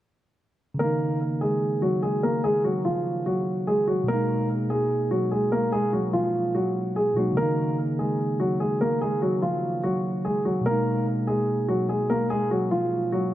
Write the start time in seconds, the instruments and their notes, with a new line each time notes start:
0.74 tine electric piano C#3 D#3
0.79 grand piano A#3 A#4, tine electric piano A#3
0.85 tine electric piano D#4
1.41 grand piano G#3 G#4
1.82 grand piano F#3 F#4
2.02 grand piano G#3 G#4
2.23 grand piano A#3 A#4
2.44 grand piano G#3 G#4
2.64 grand piano F#3 F#4
2.85 grand piano F3 F4
3.26 grand piano F#3 F#4
3.67 grand piano G#3 G#4
3.87 grand piano F#3 F#4
4.04 tine electric piano B2 G#3
4.08 grand piano A#3 A#4, tine electric piano A#3
4.14 tine electric piano D#4
4.70 grand piano G#3 G#4
5.11 grand piano F#3 F#4
5.31 grand piano G#3 G#4
5.52 grand piano A#3 A#4
5.72 grand piano G#3 G#4
5.93 grand piano F#3 F#4
6.13 grand piano F3 F4
6.55 grand piano F#3 F#4
6.96 grand piano G#3 G#4
7.14 tine electric piano B2 G#3 A#3, grand piano F#3 F#4
7.20 tine electric piano D#4
7.32 tine electric piano C#3 D#3
7.37 grand piano A#3 A#4, tine electric piano A#3
7.42 tine electric piano D#4
7.99 grand piano G#3 G#4
8.40 grand piano F#3 F#4
8.60 grand piano G#3 G#4
8.81 grand piano A#3 A#4
9.01 grand piano G#3 G#4
9.22 grand piano F#3 F#4
9.42 grand piano F3 F4
9.84 grand piano F#3 F#4
10.25 grand piano G#3 G#4
10.45 grand piano F#3 F#4
10.61 tine electric piano B2 G#3
10.66 grand piano A#3 A#4, tine electric piano A#3
10.72 tine electric piano D#4
11.27 grand piano G#3 G#4
11.68 grand piano F#3 F#4
11.89 grand piano G#3 G#4
12.10 grand piano A#3 A#4
12.30 grand piano G#3 G#4
12.51 grand piano F#3 F#4
12.71 grand piano F3 F4
13.12 grand piano F#3 F#4